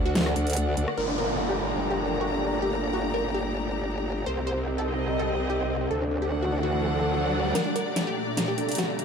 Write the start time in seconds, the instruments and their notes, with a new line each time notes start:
Already playing: wobble bass D2, analog synth pad D3 A3 F#4, string section D4 A4 D5 F#5
0.06 synth pluck F#4
0.15 snare, closed hi-hat
0.26 cross-stick
0.36 wobble bass D2, closed hi-hat
0.47 closed hi-hat
0.50 closed hi-hat
0.53 closed hi-hat
0.57 closed hi-hat
0.77 wobble bass D2, closed hi-hat
0.88 cross-stick
0.98 wobble bass G1, analog synth pad A3 A#3 G4, string section G4, synth pluck A#4, downlifter
1.08 synth pluck D4
1.16 synth pluck A#4, string section A#5
1.29 synth pluck D4
1.39 synth pluck D4
1.49 synth pluck G4
1.59 synth pluck D4
1.70 synth pluck D4
1.80 synth pluck D4
1.91 synth pluck G4
2.00 synth pluck D4
2.11 synth pluck D4
2.21 synth pluck F#4
2.32 synth pluck D4
2.41 synth pluck D4
2.52 synth pluck D4
2.62 synth pluck G4
2.73 synth pluck D4
2.82 synth pluck D4
2.93 synth pluck F#4
3.03 synth pluck D4
3.14 synth pluck A#4
3.24 synth pluck D4
3.34 synth pluck G4
4.26 wobble bass C2, analog synth pad C3 G3 D#4, string section C4, synth pluck C5, riser
4.37 synth pluck C4
4.47 synth pluck C5
4.58 synth pluck C4
4.67 synth pluck C4
4.78 synth pluck A4
4.83 string section D#5
4.88 synth pluck C4
4.99 synth pluck C4
5.09 synth pluck C4
5.19 synth pluck A4
5.29 synth pluck C4
5.40 synth pluck C4
5.50 synth pluck G4
5.60 synth pluck C4
5.70 synth pluck C4
5.81 synth pluck C4
5.91 wobble bass D2, analog synth pad D3 A3 F#4, string section D4, synth pluck A4
6.01 synth pluck D4
6.11 synth pluck D4
6.21 synth pluck G4, string section A4 F#5
6.32 synth pluck D4
6.43 synth pluck F#4, string section D5
6.52 synth pluck D4
6.63 synth pluck F#4
7.55 analog synth pad A#2 G3 A3, string section G4, synth pluck A#4, snare, closed hi-hat, riser
7.66 synth pluck D4
7.74 synth pluck A#4, string section A#5, closed hi-hat
7.86 synth pluck D4
7.96 synth pluck D4, snare, closed hi-hat
8.07 synth pluck G4
8.17 synth pluck D4
8.28 synth pluck D4
8.37 synth pluck D4, snare, closed hi-hat
8.48 synth pluck G4
8.58 synth pluck D4, closed hi-hat
8.69 synth pluck D4, closed hi-hat
8.72 closed hi-hat
8.75 snare, closed hi-hat
8.78 synth pluck F#4, closed hi-hat
8.89 synth pluck D4
8.99 synth pluck D4, closed hi-hat